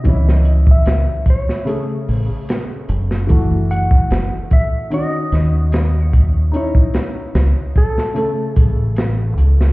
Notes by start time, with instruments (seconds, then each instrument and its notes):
Already playing: electric slide guitar D#5
0.04 fingered electric bass C#2, felt piano E3 C#4, kick, closed hi-hat
0.08 felt piano E4
0.29 snare
0.45 closed hi-hat
0.67 kick
0.71 electric slide guitar E5
0.85 fingered electric bass C#2, snare, closed hi-hat
1.26 kick, closed hi-hat
1.30 electric slide guitar C#5
1.49 snare
1.65 felt piano C#3 A3 G#4, closed hi-hat
2.08 fingered electric bass A1, open hi-hat
2.49 snare, closed hi-hat
2.89 fingered electric bass F#1, closed hi-hat
3.11 snare
3.27 felt piano E3 A3, kick, closed hi-hat
3.31 felt piano F#4
3.71 electric slide guitar F#5, closed hi-hat
3.91 kick
4.10 fingered electric bass F#1, snare, closed hi-hat
4.51 electric slide guitar E5, kick, closed hi-hat
4.90 felt piano D#3 C#4 F#4, electric slide guitar D#5, closed hi-hat
5.32 fingered electric bass D#2, snare, closed hi-hat
5.72 snare, closed hi-hat
6.04 electric slide guitar C#5
6.13 kick, closed hi-hat
6.52 felt piano C#4 D#4, closed hi-hat
6.56 felt piano E4, electric slide guitar C#5
6.75 kick
6.94 snare, closed hi-hat
7.35 fingered electric bass C#2, snare, closed hi-hat
7.76 electric slide guitar A4, kick, closed hi-hat
7.98 snare
8.14 felt piano C#3 A3, closed hi-hat
8.18 felt piano A4
8.55 fingered electric bass A1, electric slide guitar G#4, kick, closed hi-hat
8.96 snare, closed hi-hat
9.37 fingered electric bass C#2, closed hi-hat
9.61 snare